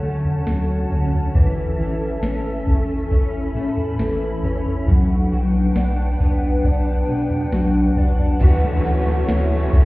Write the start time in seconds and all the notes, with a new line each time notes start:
Already playing: D3 F#3 C#4 C#5 F#5 A5
0.02 D3 A3
0.24 floor tom
0.46 D2 F#3, snare
0.91 D2 C#4, floor tom
1.13 floor tom
1.35 A1 E3 C#4 A4 E5, kick, floor tom
1.79 A1 E3
2.23 A1 C#4, snare
2.67 A1 A3, kick, floor tom
3.11 A1 C#4 B5, kick, floor tom
3.55 A2 A3
3.77 floor tom
3.99 A1 E3, snare
4.43 A1 C#4, floor tom
4.66 floor tom
4.88 B1 F#3 D4 B4 F#5 G5, kick, floor tom
5.32 B1 F#3
5.76 B1 D4, snare
6.20 B1 B3, kick, floor tom
6.64 B1 D4, kick, floor tom
7.08 B2 B3
7.30 floor tom
7.52 B1 F#3, snare
7.96 B1 D4, kick, floor tom
8.19 floor tom
8.40 D2 D3 E3 A3 C#4 F#4 C#5 E5 C#6, kick, floor tom, tambourine
8.63 A3
8.84 D2 C#4 F#4, tambourine
8.90 A3
9.07 A3
9.28 D2 E3 A3 C#4, snare, tambourine
9.34 F#4
9.52 A3
9.72 D2 C#4 F#4, kick, floor tom, tambourine
9.78 A3